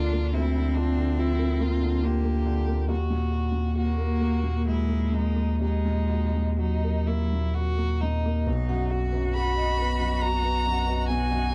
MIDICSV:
0, 0, Header, 1, 7, 480
1, 0, Start_track
1, 0, Key_signature, 5, "major"
1, 0, Tempo, 859599
1, 185, Time_signature, 3, 2, 24, 8
1, 2105, Tempo, 895522
1, 2585, Tempo, 964630
1, 3545, Tempo, 937500
1, 4505, Tempo, 874636
1, 6194, End_track
2, 0, Start_track
2, 0, Title_t, "Vibraphone"
2, 0, Program_c, 0, 11
2, 4504, Note_on_c, 0, 71, 70
2, 4577, Note_off_c, 0, 71, 0
2, 4627, Note_on_c, 0, 78, 56
2, 4699, Note_off_c, 0, 78, 0
2, 4864, Note_on_c, 0, 71, 78
2, 4937, Note_off_c, 0, 71, 0
2, 4985, Note_on_c, 0, 78, 53
2, 5058, Note_off_c, 0, 78, 0
2, 5106, Note_on_c, 0, 75, 54
2, 5178, Note_off_c, 0, 75, 0
2, 5225, Note_on_c, 0, 71, 73
2, 5298, Note_off_c, 0, 71, 0
2, 5344, Note_on_c, 0, 75, 46
2, 5416, Note_off_c, 0, 75, 0
2, 5460, Note_on_c, 0, 75, 57
2, 5534, Note_off_c, 0, 75, 0
2, 5583, Note_on_c, 0, 71, 79
2, 5656, Note_off_c, 0, 71, 0
2, 5697, Note_on_c, 0, 78, 60
2, 5772, Note_off_c, 0, 78, 0
2, 5821, Note_on_c, 0, 75, 57
2, 5894, Note_off_c, 0, 75, 0
2, 5944, Note_on_c, 0, 71, 73
2, 6016, Note_off_c, 0, 71, 0
2, 6062, Note_on_c, 0, 78, 52
2, 6135, Note_off_c, 0, 78, 0
2, 6194, End_track
3, 0, Start_track
3, 0, Title_t, "Viola"
3, 0, Program_c, 1, 41
3, 4506, Note_on_c, 1, 66, 65
3, 6194, Note_off_c, 1, 66, 0
3, 6194, End_track
4, 0, Start_track
4, 0, Title_t, "Violin"
4, 0, Program_c, 2, 40
4, 0, Note_on_c, 2, 65, 61
4, 185, Note_on_c, 2, 64, 55
4, 194, Note_off_c, 2, 65, 0
4, 416, Note_on_c, 2, 62, 61
4, 425, Note_off_c, 2, 64, 0
4, 661, Note_on_c, 2, 64, 55
4, 670, Note_off_c, 2, 62, 0
4, 903, Note_on_c, 2, 65, 52
4, 912, Note_off_c, 2, 64, 0
4, 1141, Note_on_c, 2, 67, 59
4, 1150, Note_off_c, 2, 65, 0
4, 1619, Note_off_c, 2, 67, 0
4, 1622, Note_on_c, 2, 66, 51
4, 2099, Note_off_c, 2, 66, 0
4, 2105, Note_on_c, 2, 66, 52
4, 2576, Note_off_c, 2, 66, 0
4, 2590, Note_on_c, 2, 64, 52
4, 2820, Note_on_c, 2, 63, 50
4, 2827, Note_off_c, 2, 64, 0
4, 3057, Note_off_c, 2, 63, 0
4, 3060, Note_on_c, 2, 63, 46
4, 3489, Note_off_c, 2, 63, 0
4, 3544, Note_on_c, 2, 63, 52
4, 3787, Note_on_c, 2, 64, 51
4, 3794, Note_off_c, 2, 63, 0
4, 4028, Note_on_c, 2, 66, 62
4, 4036, Note_off_c, 2, 64, 0
4, 4270, Note_on_c, 2, 63, 49
4, 4278, Note_off_c, 2, 66, 0
4, 4505, Note_off_c, 2, 63, 0
4, 4986, Note_on_c, 2, 83, 93
4, 5461, Note_on_c, 2, 82, 99
4, 5469, Note_off_c, 2, 83, 0
4, 5934, Note_off_c, 2, 82, 0
4, 5937, Note_on_c, 2, 80, 98
4, 6194, Note_off_c, 2, 80, 0
4, 6194, End_track
5, 0, Start_track
5, 0, Title_t, "Cello"
5, 0, Program_c, 3, 42
5, 0, Note_on_c, 3, 62, 83
5, 183, Note_off_c, 3, 62, 0
5, 188, Note_on_c, 3, 60, 96
5, 1137, Note_on_c, 3, 58, 72
5, 1145, Note_off_c, 3, 60, 0
5, 1616, Note_off_c, 3, 58, 0
5, 2101, Note_on_c, 3, 58, 84
5, 2585, Note_on_c, 3, 56, 74
5, 2593, Note_off_c, 3, 58, 0
5, 3055, Note_off_c, 3, 56, 0
5, 3058, Note_on_c, 3, 56, 74
5, 3543, Note_on_c, 3, 54, 56
5, 3551, Note_off_c, 3, 56, 0
5, 4270, Note_off_c, 3, 54, 0
5, 4508, Note_on_c, 3, 63, 70
5, 4745, Note_on_c, 3, 66, 88
5, 4753, Note_off_c, 3, 63, 0
5, 5947, Note_on_c, 3, 63, 81
5, 5955, Note_off_c, 3, 66, 0
5, 6194, Note_off_c, 3, 63, 0
5, 6194, End_track
6, 0, Start_track
6, 0, Title_t, "Felt piano"
6, 0, Program_c, 4, 0
6, 0, Control_c, 4, 64, 127
6, 0, Note_on_c, 4, 38, 49
6, 0, Note_on_c, 4, 50, 48
6, 0, Note_on_c, 4, 58, 47
6, 0, Note_on_c, 4, 65, 45
6, 0, Note_on_c, 4, 70, 42
6, 72, Note_off_c, 4, 58, 0
6, 72, Note_on_c, 4, 58, 44
6, 142, Note_off_c, 4, 50, 0
6, 164, Note_off_c, 4, 38, 0
6, 194, Control_c, 4, 64, 0
6, 194, Note_on_c, 4, 38, 57
6, 196, Note_off_c, 4, 70, 0
6, 198, Note_off_c, 4, 65, 0
6, 260, Note_off_c, 4, 58, 0
6, 291, Control_c, 4, 64, 127
6, 312, Note_on_c, 4, 50, 41
6, 429, Note_on_c, 4, 65, 47
6, 499, Note_off_c, 4, 50, 0
6, 545, Note_on_c, 4, 50, 48
6, 616, Note_off_c, 4, 65, 0
6, 666, Note_on_c, 4, 53, 45
6, 734, Note_off_c, 4, 50, 0
6, 776, Note_on_c, 4, 70, 42
6, 854, Note_off_c, 4, 53, 0
6, 892, Note_on_c, 4, 58, 50
6, 968, Note_off_c, 4, 70, 0
6, 1013, Note_on_c, 4, 50, 43
6, 1086, Note_off_c, 4, 58, 0
6, 1133, Note_on_c, 4, 65, 50
6, 1206, Note_off_c, 4, 50, 0
6, 1252, Note_on_c, 4, 58, 45
6, 1326, Note_off_c, 4, 65, 0
6, 1374, Note_on_c, 4, 50, 48
6, 1445, Note_off_c, 4, 58, 0
6, 1491, Note_on_c, 4, 58, 44
6, 1567, Note_off_c, 4, 50, 0
6, 1599, Note_off_c, 4, 38, 0
6, 1611, Note_on_c, 4, 39, 52
6, 1615, Note_off_c, 4, 58, 0
6, 1627, Control_c, 4, 64, 0
6, 1733, Note_on_c, 4, 46, 43
6, 1735, Control_c, 4, 64, 127
6, 1851, Note_on_c, 4, 66, 43
6, 1931, Note_off_c, 4, 46, 0
6, 1967, Note_on_c, 4, 46, 42
6, 2052, Note_off_c, 4, 66, 0
6, 2097, Note_on_c, 4, 66, 44
6, 2169, Note_off_c, 4, 46, 0
6, 2217, Note_on_c, 4, 70, 39
6, 2292, Note_off_c, 4, 66, 0
6, 2341, Note_on_c, 4, 58, 42
6, 2412, Note_off_c, 4, 70, 0
6, 2462, Note_on_c, 4, 46, 40
6, 2536, Note_off_c, 4, 58, 0
6, 2579, Note_on_c, 4, 66, 42
6, 2654, Note_off_c, 4, 46, 0
6, 2694, Note_on_c, 4, 58, 38
6, 2768, Note_off_c, 4, 66, 0
6, 2811, Note_on_c, 4, 46, 41
6, 2886, Note_off_c, 4, 58, 0
6, 2930, Note_on_c, 4, 58, 37
6, 3006, Note_off_c, 4, 46, 0
6, 3036, Note_off_c, 4, 39, 0
6, 3053, Note_on_c, 4, 39, 46
6, 3067, Control_c, 4, 64, 0
6, 3128, Note_off_c, 4, 58, 0
6, 3161, Control_c, 4, 64, 127
6, 3177, Note_on_c, 4, 46, 38
6, 3296, Note_on_c, 4, 66, 38
6, 3374, Note_off_c, 4, 46, 0
6, 3418, Note_on_c, 4, 46, 34
6, 3494, Note_off_c, 4, 66, 0
6, 3540, Note_on_c, 4, 66, 38
6, 3617, Note_off_c, 4, 46, 0
6, 3672, Note_on_c, 4, 70, 37
6, 3740, Note_off_c, 4, 66, 0
6, 3791, Note_on_c, 4, 58, 40
6, 3865, Note_off_c, 4, 70, 0
6, 3918, Note_on_c, 4, 46, 37
6, 3984, Note_off_c, 4, 58, 0
6, 4034, Note_on_c, 4, 66, 43
6, 4106, Note_off_c, 4, 46, 0
6, 4150, Note_on_c, 4, 58, 38
6, 4224, Note_off_c, 4, 66, 0
6, 4278, Note_on_c, 4, 46, 41
6, 4342, Note_off_c, 4, 58, 0
6, 4394, Note_on_c, 4, 58, 37
6, 4463, Note_off_c, 4, 46, 0
6, 4482, Note_off_c, 4, 39, 0
6, 4507, Note_off_c, 4, 58, 0
6, 4508, Note_on_c, 4, 35, 59
6, 4515, Control_c, 4, 64, 0
6, 4614, Control_c, 4, 64, 127
6, 4625, Note_on_c, 4, 42, 47
6, 4747, Note_on_c, 4, 66, 53
6, 4820, Note_off_c, 4, 42, 0
6, 4871, Note_on_c, 4, 42, 51
6, 4940, Note_off_c, 4, 66, 0
6, 4992, Note_on_c, 4, 66, 49
6, 5062, Note_off_c, 4, 42, 0
6, 5118, Note_on_c, 4, 75, 47
6, 5181, Note_off_c, 4, 66, 0
6, 5232, Note_on_c, 4, 59, 53
6, 5304, Note_off_c, 4, 75, 0
6, 5343, Note_on_c, 4, 42, 49
6, 5421, Note_off_c, 4, 59, 0
6, 5466, Note_on_c, 4, 66, 51
6, 5536, Note_off_c, 4, 42, 0
6, 5578, Note_on_c, 4, 59, 51
6, 5657, Note_off_c, 4, 66, 0
6, 5706, Note_on_c, 4, 42, 55
6, 5774, Note_off_c, 4, 59, 0
6, 5822, Note_on_c, 4, 59, 55
6, 5898, Note_off_c, 4, 42, 0
6, 5924, Note_off_c, 4, 35, 0
6, 5947, Note_on_c, 4, 35, 59
6, 5955, Control_c, 4, 64, 0
6, 6015, Note_off_c, 4, 59, 0
6, 6055, Control_c, 4, 64, 127
6, 6064, Note_on_c, 4, 42, 49
6, 6194, Note_off_c, 4, 35, 0
6, 6194, Note_off_c, 4, 42, 0
6, 6194, End_track
7, 0, Start_track
7, 0, Title_t, "Sub bass"
7, 0, Program_c, 5, 38
7, 0, Note_on_c, 5, 38, 60
7, 1614, Note_on_c, 5, 39, 64
7, 1623, Note_off_c, 5, 38, 0
7, 4502, Note_off_c, 5, 39, 0
7, 4505, Note_on_c, 5, 35, 72
7, 6194, Note_off_c, 5, 35, 0
7, 6194, End_track
0, 0, End_of_file